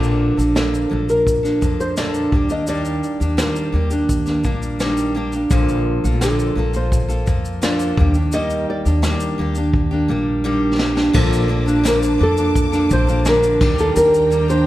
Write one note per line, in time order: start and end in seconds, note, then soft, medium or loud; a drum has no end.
0.00 0.34 A#1 medium
0.00 0.37 A#2 medium
0.00 0.38 D3 medium
0.00 0.38 F3 medium
0.00 0.38 A#3 medium
0.00 0.37 D4 medium
0.00 0.36 A4 loud
0.00 shaker soft
0.37 0.87 A#1 medium
0.37 0.55 F3 soft
0.37 0.55 A#3 soft
0.37 0.55 D4 soft
0.37 0.55 A4 soft
0.37 shaker soft
0.55 0.91 A#2 medium
0.55 0.91 D3 medium
0.55 0.88 F3 medium
0.55 0.89 A#3 medium
0.55 0.90 D4 medium
0.55 0.91 A4 medium
0.55 1.09 A4 medium
0.55 snare loud
0.55 shaker medium
0.74 shaker soft
0.89 1.58 A#1 medium
0.89 1.08 F3 medium
0.89 1.09 A#3 medium
0.89 1.08 D4 medium
0.89 1.10 A4 medium
1.09 1.45 F3 soft
1.09 1.44 A#3 soft
1.09 1.43 D4 soft
1.09 1.82 A#4 medium
1.09 shaker soft
1.27 kick medium
1.27 shaker medium
1.43 1.60 F3 soft
1.43 1.61 A#3 soft
1.43 1.62 D4 soft
1.43 1.61 A4 soft
1.43 snare soft
1.43 shaker soft
1.61 2.29 F2 medium
1.61 1.97 F3 medium
1.61 1.97 A#3 medium
1.61 1.98 D4 medium
1.61 1.98 A4 medium
1.61 kick medium
1.61 shaker soft
1.80 1.98 C5 medium
1.80 shaker soft
1.97 2.33 A#2 medium
1.97 2.33 D3 medium
1.97 2.32 F3 medium
1.97 2.32 A#3 medium
1.97 2.33 D4 medium
1.97 2.34 A4 medium
1.97 2.51 D5 medium
1.97 snare loud
1.97 shaker medium
2.14 shaker soft
2.32 2.99 D#2 medium
2.32 2.50 G3 medium
2.32 2.51 A#3 medium
2.32 2.50 D4 medium
2.32 2.48 G4 medium
2.32 kick medium
2.49 2.68 A#3 soft
2.49 2.68 D4 soft
2.49 2.68 G4 soft
2.49 2.67 D#5 medium
2.49 shaker soft
2.67 3.21 D#3 medium
2.67 3.21 G3 medium
2.67 3.22 A#3 medium
2.67 3.21 D4 medium
2.67 3.19 G4 medium
2.67 3.41 D5 medium
2.67 shaker medium
2.85 shaker medium
3.03 shaker soft
3.20 3.70 D#2 medium
3.20 3.37 A#3 soft
3.20 3.38 D4 soft
3.20 3.38 G4 medium
3.20 shaker medium
3.37 3.73 D#3 medium
3.37 3.71 G3 medium
3.37 3.73 A#3 medium
3.37 3.74 D4 medium
3.37 3.75 G4 medium
3.37 5.12 A#4 medium
3.37 snare loud
3.37 shaker medium
3.56 shaker medium
3.72 4.40 D#2 loud
3.72 3.91 G3 medium
3.72 3.92 A#3 medium
3.72 3.91 D4 medium
3.72 3.89 G4 medium
3.90 4.28 A#3 soft
3.90 4.26 D4 soft
3.90 4.24 G4 soft
3.90 shaker medium
4.09 kick medium
4.09 shaker medium
4.26 4.44 A#3 soft
4.26 4.45 D4 soft
4.26 4.44 G4 medium
4.26 snare soft
4.26 shaker soft
4.44 5.47 A#1 medium
4.44 4.79 G3 medium
4.44 4.80 A#3 medium
4.44 4.80 D4 medium
4.44 4.81 G4 medium
4.44 kick medium
4.44 shaker soft
4.62 shaker soft
4.80 5.15 D#3 medium
4.80 5.13 G3 medium
4.80 5.14 A#3 medium
4.80 5.15 D4 loud
4.80 5.16 G4 medium
4.80 snare medium
4.80 shaker medium
4.97 shaker soft
5.15 5.33 G3 medium
5.15 5.33 A#3 medium
5.15 5.33 D4 medium
5.15 5.31 G4 medium
5.32 5.51 A#3 soft
5.32 5.51 D4 medium
5.32 5.51 G4 soft
5.32 shaker soft
5.50 6.00 A#1 loud
5.50 6.04 A#2 medium
5.50 6.04 D3 medium
5.50 6.04 F3 medium
5.50 6.05 A#3 medium
5.50 6.04 F4 medium
5.50 6.03 A4 loud
5.50 kick loud
5.50 shaker medium
5.69 shaker soft
6.04 6.53 A#1 medium
6.04 6.21 F3 soft
6.04 6.22 A#3 soft
6.04 6.22 F4 medium
6.04 6.22 A4 medium
6.04 shaker medium
6.21 6.57 A#2 medium
6.21 6.57 D3 medium
6.21 6.54 F3 medium
6.21 6.56 A#3 medium
6.21 6.57 F4 medium
6.21 6.77 A4 medium
6.21 6.58 A4 medium
6.21 snare loud
6.21 shaker medium
6.39 shaker medium
6.56 7.23 A#1 medium
6.56 6.74 F3 medium
6.56 6.75 A#3 medium
6.56 6.73 F4 medium
6.56 6.72 A4 medium
6.73 7.10 F3 soft
6.73 7.09 A#3 soft
6.73 7.08 F4 soft
6.73 7.07 A4 soft
6.73 7.63 C5 medium
6.73 shaker soft
6.92 kick medium
6.92 shaker medium
7.08 7.25 F3 soft
7.08 7.26 A#3 soft
7.08 7.27 F4 soft
7.08 7.27 A4 medium
7.08 shaker soft
7.26 7.94 F2 medium
7.26 7.62 F3 medium
7.26 7.62 A#3 medium
7.26 7.62 F4 medium
7.26 7.63 A4 medium
7.26 kick medium
7.26 shaker soft
7.45 shaker soft
7.62 7.97 A#2 medium
7.62 7.98 D3 medium
7.62 7.97 F3 medium
7.62 7.97 A#3 medium
7.62 7.98 F4 medium
7.62 7.99 A4 medium
7.62 8.34 D5 medium
7.62 snare loud
7.62 shaker medium
7.79 shaker medium
7.97 8.64 D#2 loud
7.97 8.15 G3 medium
7.97 8.16 A#3 medium
7.97 8.16 D4 medium
7.97 8.14 G4 medium
7.97 kick loud
8.14 8.34 D4 soft
8.14 8.33 G4 soft
8.14 shaker soft
8.18 8.33 A#3 soft
8.32 8.86 D#3 medium
8.32 8.86 G3 medium
8.32 8.86 A#3 medium
8.32 8.84 G4 medium
8.32 8.69 D#5 loud
8.32 shaker medium
8.50 shaker soft
8.70 10.06 D5 medium
8.85 9.35 D#2 medium
8.85 9.02 A#3 soft
8.85 9.03 D4 medium
8.85 9.03 G4 soft
8.85 shaker medium
9.02 9.38 D#3 medium
9.02 9.37 G3 medium
9.02 9.38 A#3 medium
9.02 9.39 D4 medium
9.02 9.39 G4 medium
9.02 snare loud
9.02 shaker medium
9.20 shaker medium
9.38 10.05 D#2 medium
9.38 9.56 G3 medium
9.38 9.57 A#3 medium
9.38 9.56 D4 medium
9.38 9.54 G4 medium
9.55 9.93 A#3 soft
9.55 9.91 D4 soft
9.55 9.90 G4 medium
9.55 shaker medium
9.74 kick medium
9.91 10.08 A#3 soft
9.91 10.09 D4 medium
9.91 10.09 G4 medium
10.08 11.11 A#1 medium
10.08 10.44 G3 medium
10.08 10.44 A#3 medium
10.08 10.45 D4 medium
10.08 10.45 G4 medium
10.44 10.79 D#3 medium
10.44 10.77 G3 loud
10.44 10.78 A#3 medium
10.44 10.79 D4 medium
10.44 10.80 G4 loud
10.78 10.96 G3 medium
10.78 10.97 A#3 medium
10.78 10.96 D4 medium
10.78 10.94 G4 medium
10.78 snare loud
10.95 11.13 A#3 soft
10.95 11.14 D4 medium
10.95 11.14 G4 medium
10.95 snare medium
11.13 12.16 A#1 loud
11.13 11.49 A#2 loud
11.13 11.50 D3 medium
11.13 11.47 F3 loud
11.13 11.48 A#3 loud
11.13 13.58 A#3 medium
11.13 11.49 D4 medium
11.13 11.50 A4 loud
11.13 13.59 A5 medium
11.13 13.58 D6 medium
11.13 kick loud
11.13 crash loud
11.33 shaker medium
11.48 11.67 F3 medium
11.48 11.67 A#3 medium
11.48 11.66 D4 medium
11.48 11.65 A4 medium
11.66 11.83 F3 soft
11.66 11.84 A#3 soft
11.66 11.84 D4 medium
11.66 11.84 A4 medium
11.66 shaker medium
11.83 12.19 A#2 medium
11.83 12.20 D3 medium
11.83 12.17 F3 medium
11.83 12.18 A#3 medium
11.83 12.19 D4 medium
11.83 snare loud
11.83 shaker loud
11.88 11.97 A#4 medium
12.03 shaker medium
12.18 12.87 F2 loud
12.18 12.37 F3 medium
12.18 12.37 A#3 medium
12.18 12.37 D4 medium
12.18 12.36 A4 medium
12.23 12.93 A4 medium
12.37 12.74 F3 soft
12.37 12.73 A#3 soft
12.37 12.72 D4 soft
12.37 12.71 A4 soft
12.37 shaker medium
12.55 kick medium
12.55 shaker medium
12.72 12.88 F3 soft
12.72 12.89 A#3 soft
12.72 12.90 D4 medium
12.72 12.90 A4 medium
12.72 snare soft
12.72 shaker soft
12.89 13.57 A#1 loud
12.89 13.07 F3 medium
12.89 13.08 A#3 medium
12.89 13.07 D4 medium
12.89 13.06 A4 medium
12.89 13.28 C5 medium
12.89 kick medium
12.89 shaker medium
13.07 13.25 F3 soft
13.07 13.25 A#3 medium
13.07 13.26 D4 soft
13.07 13.25 A4 medium
13.07 shaker soft
13.25 13.61 A#2 medium
13.25 13.60 D3 medium
13.25 13.61 F3 medium
13.25 13.61 A#3 medium
13.25 13.61 D4 medium
13.25 13.80 A#4 medium
13.25 snare loud
13.25 shaker medium
13.43 shaker medium
13.60 13.93 D#2 loud
13.60 14.31 D#3 medium
13.60 14.29 G3 medium
13.60 14.31 A#3 medium
13.60 14.66 D4 medium
13.60 14.32 D4 medium
13.60 14.32 G4 medium
13.60 14.66 G5 medium
13.60 14.66 A#5 medium
13.60 kick loud
13.60 crash medium
13.79 13.97 A4 medium
13.79 shaker medium
13.96 14.66 D#2 loud
13.96 14.50 A#4 loud
13.96 shaker medium
14.14 shaker soft
14.30 14.48 G3 medium
14.30 14.49 A#3 medium
14.30 14.49 D4 medium
14.30 14.47 G4 medium
14.30 shaker soft
14.48 14.65 A#3 soft
14.48 14.66 D4 medium
14.48 14.66 G4 medium
14.48 14.66 C5 loud
14.48 shaker medium